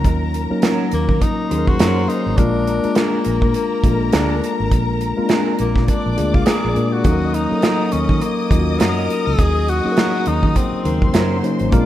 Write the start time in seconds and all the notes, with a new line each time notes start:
Already playing: F#3 A#3 C#4 D#4 F4 A#4 A#5
0.04 D#2, kick, closed hi-hat
0.34 closed hi-hat
0.50 F#3 A#3 C#4 D#4 A#4, muted fingered electric bass stroke
0.62 C#4 F#4 A#4, snare, closed hi-hat
0.91 D#2 A#3, closed hi-hat
1.09 D#3, kick
1.21 D#4, kick, closed hi-hat
1.50 D#2 F#3 A#3 C#4 D#4 G#4 C5 C6, closed hi-hat
1.58 A#4
1.67 F#4, kick
1.79 F#2 C#4 F#4 A#4, snare, closed hi-hat
2.08 F#3 A#3 C#4 D#4 A#4, closed hi-hat
2.26 G#1
2.38 A#1 G#3 A#3 D4 F4 A#4 A#5, kick, closed hi-hat
2.67 closed hi-hat
2.83 G#3 A#3 D4 F4 A#4, muted fingered electric bass stroke, closed hi-hat
2.95 A#3 D4 G#4 A#4, snare, closed hi-hat
3.24 A#1, closed hi-hat
3.42 A#2, kick
3.54 A#3, closed hi-hat
3.84 A#1 G#3 A#3 D4 F4 A4, kick, closed hi-hat
3.92 A#4
4.12 D2 D4 G#4 A#4, snare, closed hi-hat
4.44 closed hi-hat
4.60 G#1
4.71 A#1, kick, closed hi-hat
5.01 closed hi-hat
5.17 G#3 A#3 C4 F4 A#4, muted fingered electric bass stroke
5.24 D4
5.29 D4 G#4 A#4, snare, closed hi-hat
5.59 A#1 A#3, closed hi-hat
5.76 A#2, kick, snare
5.88 D4 D5 D6, kick, closed hi-hat
6.06 A#1
6.16 D2 G#3 A#3 D4 F4 G#4, closed hi-hat
6.34 C2 F4, kick
6.46 D4 G#4 A#4, snare, closed hi-hat
6.65 A#1
6.75 A#2 G#3 A#3 D4 F4 A#4, closed hi-hat
6.93 F#4
7.04 D#2 F#3 A#3 C#4 D#4 A4 D#5 D#6, kick, closed hi-hat
7.12 A#4
7.34 D#4, closed hi-hat
7.50 F#3 A#3 C#4 D#4 A4, muted fingered electric bass stroke
7.58 A#4
7.62 C#4 F#4 A#4, snare, closed hi-hat
7.92 D#2 C#4, closed hi-hat
8.09 D#3, kick
8.21 A#3, closed hi-hat
8.51 D#2 F#3 A#3 C#4 D#4 F4, kick, closed hi-hat
8.58 F#4
8.79 F#2 C#4 F#4 A#4, snare, closed hi-hat
9.10 closed hi-hat
9.26 C#2 G#4
9.39 D#2, kick, closed hi-hat
9.68 F#4, closed hi-hat
9.84 F#3 A#3 C#4 D#4 G#4, muted fingered electric bass stroke
9.92 A#4
9.97 C#4 F#4 A#4, snare, closed hi-hat
10.26 D#2 D#4, closed hi-hat
10.43 D#3, kick
10.56 C4, kick, closed hi-hat
10.73 muted fingered electric bass stroke
10.84 D#2 C#3 F#3 A#3 D#4 A#4 C5 C6, closed hi-hat
11.02 kick
11.13 F#2 C#4 F#4 A#4, snare, closed hi-hat
11.43 F#3 A#3 C#4 D#4 C5, closed hi-hat
11.59 G#1, closed hi-hat
11.72 A#1 G#3 A#3 C4 F4 A#4 D5 D6, kick, closed hi-hat
11.79 D4